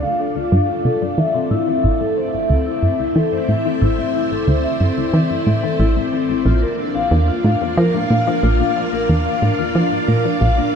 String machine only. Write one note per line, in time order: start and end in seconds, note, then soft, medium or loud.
0.00 6.45 A3 medium
0.00 2.87 D4 medium
0.00 1.18 F4 medium
0.00 2.34 D5 medium
0.00 1.18 F5 medium
1.40 8.57 C4 medium
1.91 6.45 E4 medium
2.28 8.57 C5 medium
2.87 6.46 E5 medium
6.46 10.75 A#3 medium
6.57 10.75 D4 medium
6.81 10.75 F4 medium
6.86 10.75 F5 medium
7.77 10.75 D5 medium